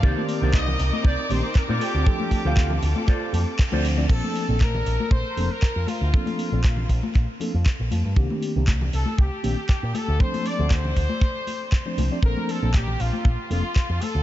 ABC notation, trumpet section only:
X:1
M:4/4
L:1/16
Q:"Swing 16ths" 1/4=118
K:Bb
V:1 name="Trumpet section"
z4 e4 d2 c2 B2 G2- | G6 z8 z2 | A4 B4 c3 B3 F2- | F6 z8 z2 |
z6 A2 G6 A2 | c2 d2 c8- c2 z2 | B2 A2 G2 F4 F4 A2 |]